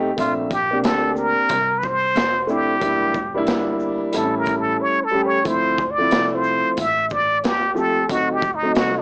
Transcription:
0.00 0.15 B1 medium
0.00 0.10 G4 loud
0.16 0.84 A#1 loud
0.16 0.49 A3 medium
0.16 0.50 C4 medium
0.16 0.50 D4 medium
0.16 0.34 F4 medium
0.16 0.51 E5 medium
0.16 kick medium
0.16 closed hi-hat medium
0.51 0.86 G4 medium
0.51 kick loud
0.51 closed hi-hat medium
0.51 shaker medium
0.71 1.51 A#3 medium
0.71 1.51 C4 medium
0.71 1.52 D4 medium
0.71 1.52 G4 medium
0.84 1.36 D2 medium
0.84 1.20 A4 medium
0.84 snare loud
0.84 closed hi-hat medium
1.16 1.80 A#4 loud
1.16 shaker medium
1.49 2.13 C2 loud
1.49 kick medium
1.49 closed hi-hat medium
1.79 1.86 B4 medium
1.79 shaker medium
1.83 2.52 C5 loud
1.83 kick medium
2.15 2.78 F1 loud
2.15 snare loud
2.15 closed hi-hat medium
2.47 2.72 A3 medium
2.47 2.73 C4 medium
2.47 2.74 D4 medium
2.47 2.74 E4 medium
2.47 3.49 G4 medium
2.47 shaker medium
2.80 3.47 E1 loud
2.80 3.13 G3 medium
2.80 3.13 A#3 medium
2.80 3.14 D4 medium
2.80 3.14 E4 medium
2.80 kick loud
2.80 closed hi-hat medium
3.14 kick medium
3.14 shaker medium
3.34 4.11 G3 medium
3.34 4.13 A#3 medium
3.34 4.14 D4 medium
3.34 4.14 E4 loud
3.47 3.99 G1 medium
3.47 snare loud
3.47 closed hi-hat medium
3.80 shaker medium
4.03 muted upright bass stroke soft
4.12 4.77 A1 loud
4.12 4.96 G3 medium
4.12 4.97 A3 medium
4.12 4.23 C4 medium
4.12 4.98 E4 medium
4.12 closed hi-hat medium
4.16 4.36 A4 medium
4.21 5.00 C#4 medium
4.38 4.61 A#4 medium
4.46 kick medium
4.46 closed hi-hat soft
4.46 shaker soft
4.59 4.83 A4 medium
4.81 5.05 C#5 medium
5.04 5.27 A4 medium
5.11 5.36 G3 medium
5.11 5.37 A3 medium
5.11 5.38 C#4 medium
5.11 5.38 G4 medium
5.26 5.49 C#5 medium
5.44 6.08 D2 loud
5.44 5.77 F3 medium
5.44 5.77 A3 medium
5.44 5.78 C4 medium
5.44 5.78 E4 medium
5.44 5.92 C5 loud
5.44 kick medium
5.44 closed hi-hat medium
5.78 kick loud
5.78 shaker medium
5.91 6.36 D5 loud
5.98 6.78 F3 medium
5.98 6.79 A3 medium
5.98 6.79 C4 medium
5.98 6.80 E4 medium
6.11 6.64 C2 medium
6.11 snare loud
6.11 closed hi-hat medium
6.35 6.78 C5 loud
6.44 shaker medium
6.67 muted upright bass stroke soft
6.77 7.41 A1 medium
6.77 7.13 E5 loud
6.77 kick medium
6.77 closed hi-hat medium
7.10 7.46 D5 loud
7.10 kick medium
7.10 shaker medium
7.44 8.07 D#2 medium
7.44 7.79 G4 loud
7.44 snare loud
7.44 closed hi-hat medium
7.74 8.00 F3 medium
7.74 8.01 A3 medium
7.74 8.01 C4 medium
7.74 8.02 G4 medium
7.74 8.13 A4 loud
7.74 shaker medium
8.08 8.72 D2 loud
8.08 8.40 F#3 medium
8.08 8.41 A3 medium
8.08 8.41 C4 medium
8.08 8.42 D#4 medium
8.08 8.34 F#4 loud
8.08 kick medium
8.08 closed hi-hat medium
8.32 8.56 G4 medium
8.42 kick loud
8.42 shaker medium
8.55 8.77 D#4 medium
8.62 9.02 F#3 medium
8.62 9.02 A3 medium
8.62 9.02 C4 medium
8.62 9.02 D#4 medium
8.75 9.02 C2 loud
8.75 9.00 F#4 medium
8.75 snare loud
8.75 closed hi-hat medium
8.99 9.02 D4 medium

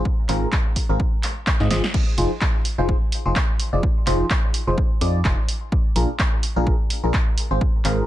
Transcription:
0.05 kick loud
0.29 0.46 G#1 loud
0.29 0.48 G#2 medium
0.29 0.48 C4 medium
0.29 0.48 F4 medium
0.29 0.48 G#4 medium
0.29 0.48 A#4 loud
0.29 clap medium
0.29 open hi-hat loud
0.52 kick loud
0.52 clap loud
0.76 kick medium
0.76 open hi-hat loud
0.89 0.97 G#1 loud
0.89 0.99 G#2 medium
0.89 0.99 C4 medium
0.89 0.99 F4 medium
0.89 0.99 G#4 medium
0.89 0.99 A#4 loud
1.00 kick loud
1.23 clap medium
1.23 open hi-hat loud
1.47 kick loud
1.47 clap loud
1.60 1.69 G#2 medium
1.60 1.69 G#2 loud
1.60 1.69 C4 medium
1.60 1.69 F4 medium
1.60 1.69 G#4 medium
1.60 1.69 D#5 loud
1.60 snare medium
1.71 1.81 G#1 loud
1.71 1.83 F3 medium
1.71 1.83 C4 medium
1.71 1.83 F4 medium
1.71 1.83 G#4 medium
1.71 1.83 D#5 medium
1.71 snare medium
1.71 open hi-hat loud
1.84 snare medium
1.94 kick loud
1.94 crash medium
2.18 2.28 F1 loud
2.18 2.31 F3 medium
2.18 2.31 D#4 medium
2.18 2.31 F4 medium
2.18 2.31 G#4 medium
2.18 2.31 C5 loud
2.18 open hi-hat loud
2.41 kick loud
2.41 clap loud
2.65 open hi-hat loud
2.78 2.93 F1 loud
2.78 2.96 F3 medium
2.78 2.96 D#4 medium
2.78 2.96 F4 medium
2.78 2.96 G#4 medium
2.78 2.96 C5 loud
2.89 kick loud
3.12 open hi-hat loud
3.26 3.34 F1 loud
3.26 3.36 F3 medium
3.26 3.36 D#4 medium
3.26 3.36 F4 medium
3.26 3.36 G#4 medium
3.26 3.36 C5 medium
3.36 kick loud
3.36 clap loud
3.60 open hi-hat loud
3.73 3.81 F1 loud
3.73 3.83 F3 medium
3.73 3.83 D#4 medium
3.73 3.83 F4 medium
3.73 3.83 G#4 medium
3.73 3.83 D5 medium
3.83 kick loud
4.07 4.24 F1 loud
4.07 4.26 F3 medium
4.07 4.26 D#4 medium
4.07 4.26 F4 medium
4.07 4.26 G#4 medium
4.07 4.26 C5 loud
4.07 clap medium
4.07 open hi-hat loud
4.30 kick loud
4.30 clap loud
4.54 open hi-hat loud
4.67 4.75 F1 loud
4.67 4.77 F3 medium
4.67 4.77 D#4 medium
4.67 4.77 F4 medium
4.67 4.77 G#4 medium
4.67 4.77 C5 medium
4.78 kick loud
5.01 5.23 F2 loud
5.01 5.20 F3 medium
5.01 5.20 D#4 medium
5.01 5.20 F4 medium
5.01 5.20 G#4 medium
5.01 5.20 D5 loud
5.01 open hi-hat loud
5.25 5.35 F1 loud
5.25 5.38 D#4 medium
5.25 5.38 F4 medium
5.25 5.38 G#4 medium
5.25 5.38 C5 medium
5.25 kick loud
5.25 clap loud
5.49 open hi-hat loud
5.72 kick loud
5.96 6.06 A#1 loud
5.96 6.09 A#2 medium
5.96 6.09 D4 medium
5.96 6.09 F4 medium
5.96 6.09 G#4 medium
5.96 6.09 A#4 loud
5.96 open hi-hat loud
6.19 kick loud
6.19 clap loud
6.43 open hi-hat loud
6.56 6.71 A#1 loud
6.56 6.74 A#2 medium
6.56 6.74 D4 medium
6.56 6.74 F4 medium
6.56 6.74 G#4 medium
6.56 6.74 A#4 loud
6.67 kick loud
6.90 open hi-hat loud
7.04 7.12 A#1 loud
7.04 7.14 A#2 medium
7.04 7.14 D4 medium
7.04 7.14 F4 medium
7.04 7.14 G#4 medium
7.04 7.14 A#4 medium
7.14 kick loud
7.14 clap loud
7.38 open hi-hat loud
7.51 7.59 G#1 loud
7.51 7.61 G#2 medium
7.51 7.61 C4 medium
7.51 7.61 F4 medium
7.51 7.61 G#4 medium
7.51 7.61 C5 medium
7.61 kick loud
7.85 8.02 G#1 loud
7.85 8.04 G#2 loud
7.85 8.04 C4 medium
7.85 8.04 F4 medium
7.85 8.04 G#4 medium
7.85 8.04 A#4 loud
7.85 clap medium
7.85 open hi-hat loud

